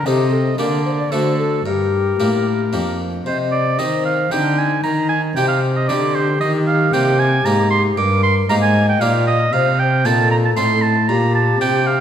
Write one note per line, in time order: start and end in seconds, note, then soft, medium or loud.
0.06 0.57 C3 medium
0.06 0.54 C3 soft
0.06 0.54 C4 soft
0.06 0.55 D#4 soft
0.06 0.34 G4 medium
0.06 0.55 A4 soft
0.06 0.58 D#5 medium
0.33 0.58 A4 medium
0.58 1.08 D3 soft
0.58 1.11 D3 medium
0.58 1.08 A#3 soft
0.58 1.08 D4 soft
0.58 1.08 G4 soft
0.58 0.84 A#4 medium
0.58 1.13 D5 medium
0.85 0.91 C5 medium
0.99 1.14 D5 medium
1.11 1.64 D3 medium
1.11 1.62 D3 soft
1.11 1.61 A3 soft
1.11 1.62 D4 soft
1.11 1.62 F#4 soft
1.11 1.65 A4 medium
1.11 1.38 C5 medium
1.39 1.65 A4 medium
1.65 2.18 G2 medium
1.65 2.15 G2 soft
1.65 2.97 G4 medium
1.65 2.97 A#4 soft
2.19 2.74 A2 soft
2.19 2.69 A2 soft
2.19 2.58 A#3 soft
2.19 2.58 D4 soft
2.19 2.58 G4 soft
2.73 3.26 F2 soft
2.73 3.22 F2 soft
2.73 3.11 A#3 soft
2.73 3.11 D4 soft
2.73 3.12 G4 soft
3.26 3.81 C3 medium
3.26 3.75 C3 soft
3.26 3.38 C5 medium
3.26 3.81 D#5 medium
3.52 3.81 D5 medium
3.79 4.28 D#3 soft
3.79 4.31 D#3 medium
3.79 4.17 C4 soft
3.79 4.17 D#4 soft
3.79 4.17 G4 soft
3.79 4.32 C5 medium
3.79 4.04 D#5 medium
4.05 4.33 F5 medium
4.32 4.80 D3 soft
4.32 4.83 D3 medium
4.32 4.69 C4 soft
4.32 4.70 D#4 soft
4.32 5.35 D#4 medium
4.32 4.70 G4 soft
4.32 4.60 G5 medium
4.58 4.83 G#5 medium
4.84 5.33 D#3 soft
4.84 5.36 D#3 medium
4.84 5.09 A#5 medium
5.09 5.21 G#5 medium
5.36 5.91 C3 medium
5.36 5.85 C3 soft
5.36 5.75 C4 soft
5.36 5.75 D#4 soft
5.36 8.00 G4 medium
5.36 5.75 G4 soft
5.36 5.48 G5 medium
5.48 5.60 F5 medium
5.76 5.90 D#5 medium
5.88 6.41 D3 medium
5.88 6.38 D3 soft
5.88 6.27 C4 soft
5.88 6.27 D#4 soft
5.88 6.27 G4 soft
5.88 6.16 D5 medium
6.15 6.40 C5 medium
6.41 6.90 D#3 soft
6.41 6.93 D#3 medium
6.41 6.53 D#5 medium
6.67 6.95 F5 medium
6.94 7.42 C3 medium
6.94 7.45 C3 medium
6.94 7.31 A#3 soft
6.94 7.31 D#4 soft
6.94 7.32 G4 soft
6.94 7.21 G5 medium
7.19 7.47 G#5 medium
7.45 7.96 G#2 medium
7.45 7.94 G#2 soft
7.45 7.83 A#3 soft
7.45 7.83 D#4 soft
7.45 7.84 G4 soft
7.45 7.70 A#5 medium
7.71 7.83 C6 medium
7.97 8.48 G2 medium
7.97 8.45 G2 medium
7.97 8.49 A#4 medium
7.97 8.23 D6 medium
8.23 8.35 C6 medium
8.49 9.00 G#2 medium
8.49 8.97 G#2 medium
8.49 8.87 A#3 soft
8.49 8.87 D#4 soft
8.49 8.88 G4 soft
8.49 9.04 D#5 medium
8.49 8.55 A#5 medium
8.62 8.88 G#5 medium
8.89 9.02 G5 medium
9.01 9.52 A#2 medium
9.01 9.49 A#2 soft
9.01 9.39 A#3 soft
9.01 9.39 D#4 soft
9.01 9.39 G4 soft
9.01 9.53 D5 medium
9.01 9.27 F5 medium
9.27 9.54 D#5 medium
9.53 10.01 C3 medium
9.53 10.07 C3 medium
9.53 9.87 C5 medium
9.53 9.81 F5 medium
9.80 10.07 G5 medium
10.05 10.56 A#2 medium
10.05 10.53 A#2 medium
10.05 10.43 C4 soft
10.05 10.43 D#4 soft
10.05 10.83 A4 medium
10.05 10.43 A4 soft
10.05 10.30 A5 medium
10.31 10.37 A#5 medium
10.45 10.51 A5 medium
10.57 11.11 A2 medium
10.57 11.05 A2 soft
10.57 10.94 C4 soft
10.57 10.94 D#4 soft
10.57 10.95 A4 soft
10.57 10.84 C6 medium
10.82 11.10 A5 medium
11.08 11.61 A#2 medium
11.08 11.57 A#2 medium
11.08 12.00 G4 medium
11.08 11.34 A#5 medium
11.35 11.60 A5 medium
11.61 12.00 C3 medium
11.61 11.99 D4 soft
11.61 11.99 G4 medium
11.61 11.89 G5 medium
11.87 12.00 F5 medium